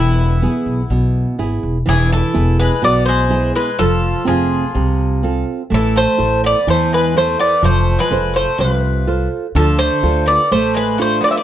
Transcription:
0.00 0.44 E1 loud
0.00 0.41 E3 medium
0.00 1.35 B3 medium
0.00 1.34 E4 medium
0.42 0.81 B3 medium
0.42 0.81 E4 soft
0.42 0.81 G#4 medium
0.66 0.83 B1 medium
0.90 1.24 B1 medium
0.90 1.37 B2 medium
1.39 1.60 G#1 medium
1.39 1.77 B3 soft
1.39 1.77 E4 soft
1.39 1.77 G#4 soft
1.63 1.84 E1 medium
1.86 2.20 E1 loud
1.86 2.33 E3 medium
1.86 2.10 E3 medium
1.86 2.12 G#4 medium
2.12 2.57 E3 medium
2.12 2.56 A4 medium
2.34 2.69 E1 loud
2.34 2.72 B3 soft
2.34 2.73 E4 soft
2.34 2.73 G#4 medium
2.60 2.82 G#3 medium
2.60 2.84 B4 medium
2.82 3.50 B1 medium
2.82 3.29 B2 medium
2.82 3.06 B3 medium
2.82 3.05 D5 loud
3.06 3.52 G#3 medium
3.06 3.51 C5 medium
3.30 3.69 B3 medium
3.30 3.69 E4 soft
3.30 3.69 G#4 medium
3.55 3.77 G#3 medium
3.55 3.80 B4 medium
3.79 4.13 F1 loud
3.79 4.23 F3 medium
3.79 4.25 F3 medium
3.79 4.27 A4 loud
4.25 4.61 F1 loud
4.25 5.43 F3 medium
4.25 4.65 A3 medium
4.25 4.64 C4 medium
4.25 4.64 F4 soft
4.25 5.43 G#4 medium
4.75 5.42 C2 medium
4.75 5.21 C3 medium
5.23 5.61 C4 soft
5.23 5.62 F4 soft
5.23 5.62 A4 medium
5.70 6.05 A1 loud
5.70 6.17 A3 medium
5.74 5.95 E3 medium
5.74 5.97 A4 medium
5.96 6.40 A3 medium
5.96 6.41 C5 loud
6.18 6.53 A1 medium
6.18 6.57 E4 soft
6.18 6.57 A4 soft
6.18 6.57 C5 medium
6.44 6.66 B3 medium
6.44 6.67 D5 loud
6.67 7.34 E2 medium
6.67 7.14 E3 medium
6.67 6.90 A3 medium
6.67 6.93 C5 medium
6.93 7.14 G#3 medium
6.93 7.15 B4 medium
7.15 7.38 A3 medium
7.15 7.53 E4 soft
7.15 7.54 A4 soft
7.15 7.54 C5 soft
7.15 7.39 C5 medium
7.39 7.61 B3 medium
7.39 7.62 D5 loud
7.63 7.96 F1 loud
7.63 8.10 F3 medium
7.63 7.97 A3 medium
7.63 7.98 C5 medium
7.99 8.32 G#3 medium
7.99 8.33 B4 medium
8.11 8.44 F1 loud
8.11 8.49 F4 medium
8.11 8.50 A4 soft
8.11 8.50 C5 medium
8.34 8.57 A3 medium
8.34 8.58 C5 medium
8.58 9.26 C2 medium
8.58 9.05 C3 medium
8.58 9.27 F3 medium
8.58 9.28 B4 medium
9.07 9.46 F4 soft
9.07 9.46 A4 soft
9.07 9.46 C5 medium
9.55 9.89 D2 loud
9.55 10.02 D3 medium
9.55 9.78 F3 medium
9.55 9.78 A4 medium
9.79 10.24 A3 medium
9.79 10.27 C5 loud
10.03 10.37 D2 loud
10.03 10.41 D4 soft
10.03 10.42 F4 soft
10.03 10.42 A4 medium
10.26 10.49 B3 medium
10.26 10.50 D5 loud
10.51 11.19 A1 medium
10.51 10.98 A3 medium
10.51 10.74 A3 medium
10.51 10.76 C5 medium
10.74 10.97 G#3 medium
10.74 10.98 B4 medium
10.98 11.20 A3 medium
10.98 11.38 D4 soft
10.98 11.38 F4 soft
10.98 11.38 A4 medium
10.98 11.24 C5 medium
11.21 11.27 B3 medium
11.21 11.30 D5 medium
11.28 11.32 C4 medium
11.28 11.36 E5 medium
11.32 11.43 B3 medium
11.37 11.43 D5 medium

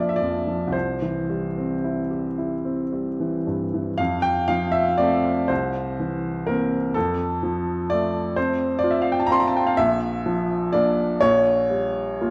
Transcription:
0.00 0.70 A#1 medium
0.00 0.37 F3 soft
0.00 0.76 A#3 soft
0.00 0.76 D4 soft
0.00 0.76 F4 medium
0.00 0.16 D5 medium
0.00 0.09 E5 medium
0.09 0.17 E5 medium
0.16 0.74 D5 medium
0.21 0.64 F2 soft
0.47 0.74 F3 soft
0.67 3.92 C2 soft
0.72 3.46 C5 medium
1.02 1.46 E3 soft
1.30 1.73 G3 soft
1.58 2.00 C4 soft
1.84 2.27 E4 soft
2.11 2.53 G4 soft
2.38 2.81 E4 soft
2.65 3.08 C4 soft
2.92 3.36 G3 soft
3.20 3.63 E3 soft
3.47 3.89 G2 soft
3.74 3.99 E3 soft
3.98 5.46 F2 medium
3.98 4.23 F5 medium
4.22 4.48 G5 medium
4.48 5.30 F3 soft
4.48 4.74 F5 medium
4.72 4.98 E5 medium
4.98 5.46 A3 soft
4.98 5.46 C4 soft
4.98 5.49 D5 medium
5.48 6.91 C2 medium
5.48 6.46 C5 medium
6.00 6.76 E3 soft
6.47 6.92 A#3 soft
6.47 6.92 C4 soft
6.47 6.95 A#4 medium
6.94 9.73 F2 medium
6.94 7.90 A4 medium
7.43 8.18 F3 medium
7.90 8.65 A3 medium
7.90 8.36 D5 medium
8.36 9.12 C4 medium
8.36 8.78 C5 medium
8.79 8.92 D5 medium
8.84 9.58 F4 medium
8.91 9.02 E5 medium
9.02 9.11 F5 medium
9.12 9.20 G5 medium
9.20 9.27 A5 medium
9.27 9.77 C4 medium
9.27 9.34 A#5 medium
9.32 9.40 C6 medium
9.40 9.48 A#5 medium
9.48 9.57 A5 medium
9.56 9.67 G5 medium
9.67 9.77 F5 medium
9.77 11.18 A#1 medium
9.77 10.73 E5 loud
10.26 11.03 F3 medium
10.73 11.18 A#3 soft
10.73 11.18 D4 medium
10.73 11.21 D5 medium
11.21 12.30 A#1 medium
11.21 12.30 C#5 loud
11.70 12.30 G3 soft
12.21 12.30 A#3 soft
12.21 12.30 F4 soft

